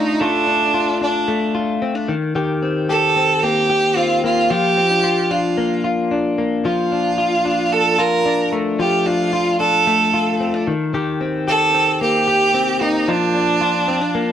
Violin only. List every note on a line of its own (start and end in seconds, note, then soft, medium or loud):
0.00 0.22 D#4 medium
0.20 1.01 D4 loud
1.02 1.52 D4 medium
2.89 3.45 A4 loud
3.43 3.98 G4 loud
3.97 4.23 F4 loud
4.24 4.52 F4 medium
4.50 5.33 G4 loud
5.31 5.85 F4 medium
6.65 7.74 F4 loud
7.72 8.01 A4 loud
8.00 8.53 A#4 loud
8.80 9.08 G4 medium
9.07 9.58 F4 loud
9.59 10.62 A4 loud
11.48 11.98 A4 loud
12.02 12.83 G4 loud
12.82 13.10 D#4 loud
13.08 14.32 D4 loud